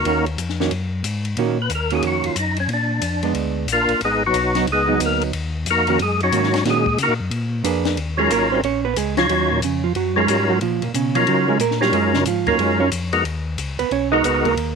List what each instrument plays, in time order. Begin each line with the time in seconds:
Already playing: tonewheel organ A#3 D#4 F#4 A#4
0.05 tonewheel organ D#2, hollow-body jazz guitar D#3 A#3 C#4 F#4, ride
0.26 ride
0.38 tonewheel organ F2, hi-hat pedal, ride
0.49 snare
0.60 hollow-body jazz guitar D#3 A#3 C#4 F#4, snare
0.71 tonewheel organ F#2, ride
1.03 tonewheel organ G#2, hi-hat pedal, ride
1.25 ride
1.37 tonewheel organ A#2, hollow-body jazz guitar D#3 A#3 C#4 F#4, ride
1.62 tonewheel organ B4
1.69 tonewheel organ D#2, hi-hat pedal, ride
1.75 tonewheel organ A#4
1.90 hollow-body jazz guitar D#3 A#3 C#4 F#4, ride
1.95 tonewheel organ G#4
2.02 tonewheel organ F2, ride
2.07 tonewheel organ F#4
2.23 tonewheel organ F2 F4, ride
2.35 tonewheel organ F#2 D#4, hi-hat pedal, ride
2.56 tonewheel organ C#4, ride
2.68 tonewheel organ A#2, ride
2.73 tonewheel organ D4
3.01 tonewheel organ F2, hi-hat pedal, ride
3.23 hollow-body jazz guitar G#3 B3 D4, ride
3.34 tonewheel organ D2, ride
3.67 tonewheel organ A#1, hi-hat pedal, ride
3.72 tonewheel organ A#3 D4 F4 A#4
3.88 tonewheel organ A#1, ride
4.00 tonewheel organ G#1, ride
4.04 tonewheel organ G#3 B3 D#4 G#4
4.26 tonewheel organ F#3 B3 D#4 F#4
4.33 tonewheel organ B1, hi-hat pedal, ride
4.55 hollow-body jazz guitar F#3 B3 D#4, snare, ride
4.67 tonewheel organ C#2, ride
4.72 tonewheel organ G#3 B3 D#4 G#4
4.88 hollow-body jazz guitar F#3 B3 D#4
5.00 tonewheel organ D2, hi-hat pedal, ride
5.05 tonewheel organ A#3 A#4
5.21 ride
5.33 tonewheel organ D#2, ride
5.66 tonewheel organ F2, hi-hat pedal, ride
5.70 tonewheel organ A#3 D#4 F#4 A#4
5.87 hollow-body jazz guitar D#3 A#3 C#4 F#4, ride
5.99 tonewheel organ F#2 G#3 G#4, ride
6.20 tonewheel organ F#3 C#4 D#4 F#4, ride
6.32 tonewheel organ G#2, hollow-body jazz guitar D#3 A#3 C#4 F#4, hi-hat pedal, ride
6.43 snare
6.54 snare, ride
6.65 tonewheel organ A#2, hollow-body jazz guitar D#3 A#3 C#4 F#4, snare, ride
6.70 tonewheel organ G#3 G#4
6.86 kick
6.98 tonewheel organ C#3, hi-hat pedal, ride
7.02 tonewheel organ A#3 D#4 F#4 A#4
7.08 tonewheel organ A#2
7.20 tonewheel organ F#2
7.31 tonewheel organ A#2, ride
7.64 tonewheel organ F2, hollow-body jazz guitar A#3 D4 G#4 B4, hi-hat pedal, ride
7.85 snare, ride
7.96 tonewheel organ D#2, ride
8.17 tonewheel organ F#3 C#4 D#4 F4 A#4, hollow-body jazz guitar G#3 G#4
8.29 tonewheel organ G#1, hollow-body jazz guitar A#3 A#4, hi-hat pedal, ride
8.52 hollow-body jazz guitar C4 C5
8.62 tonewheel organ A#1, hollow-body jazz guitar C#4 C#5, ride
8.85 hollow-body jazz guitar B3 B4
8.96 tonewheel organ C#2, hollow-body jazz guitar G#3 G#4, hi-hat pedal, ride
9.17 hollow-body jazz guitar F3 F4, tonewheel organ F#3 C#4 D#4 F4 C#5, snare, ride
9.29 tonewheel organ D#2, hollow-body jazz guitar F#3 F#4, ride
9.51 hollow-body jazz guitar A#2 A#3
9.62 tonewheel organ F2, hollow-body jazz guitar C#3 C#4, hi-hat pedal, ride
9.84 hollow-body jazz guitar F3 F4
9.95 tonewheel organ F#2, hollow-body jazz guitar F#3 F#4, ride
10.16 tonewheel organ F#3 C#4 D#4 F4 A#4, hollow-body jazz guitar G#3 G#4
10.28 tonewheel organ G#2, hollow-body jazz guitar G3 G4, hi-hat pedal, ride
10.50 hollow-body jazz guitar F#3 F#4
10.61 tonewheel organ A#2, hollow-body jazz guitar F3 F4, ride
10.82 tonewheel organ A#2, hollow-body jazz guitar A#2 A#3, ride
10.94 tonewheel organ B2, hollow-body jazz guitar C#3 C#4, hi-hat pedal, ride
11.15 hollow-body jazz guitar F3 F4, tonewheel organ F#3 C#4 D#4 F4 A#4, ride
11.27 tonewheel organ C#3, hollow-body jazz guitar F#3 F#4, ride
11.49 hollow-body jazz guitar G#3 G#4
11.59 tonewheel organ A#2, hollow-body jazz guitar A#3 A#4, hi-hat pedal, ride
11.71 snare
11.81 tonewheel organ F#3 C#4 D#4 F4 A#4, hollow-body jazz guitar G3 G4, snare
11.92 tonewheel organ F#2, hollow-body jazz guitar G#3 G#4, ride
12.14 hollow-body jazz guitar C#3 C#4, snare
12.25 tonewheel organ G#2, hollow-body jazz guitar F3 F4, hi-hat pedal, ride
12.46 tonewheel organ G#2 F#3 C#4 D#4 F4 A#4, hollow-body jazz guitar A#3 A#4, kick, ride
12.58 tonewheel organ F#2, hollow-body jazz guitar G#3 G#4, ride
12.80 hollow-body jazz guitar C#4 C#5
12.91 tonewheel organ F2, hi-hat pedal, ride
13.13 tonewheel organ G#3 B3 D#4 F#4 A#4, ride
13.24 tonewheel organ D#2, ride
13.57 tonewheel organ C#2, hi-hat pedal, ride
13.79 tonewheel organ C#2, hollow-body jazz guitar B3 B4, ride
13.91 tonewheel organ B1, hollow-body jazz guitar C#4 C#5, ride
14.12 tonewheel organ G#3 B3 D#4 F#4 A#4, hollow-body jazz guitar D#4 D#5
14.24 tonewheel organ C#2, hollow-body jazz guitar B3 B4, hi-hat pedal, ride
14.45 hollow-body jazz guitar A#3 A#4, kick, ride
14.56 tonewheel organ D#2, ride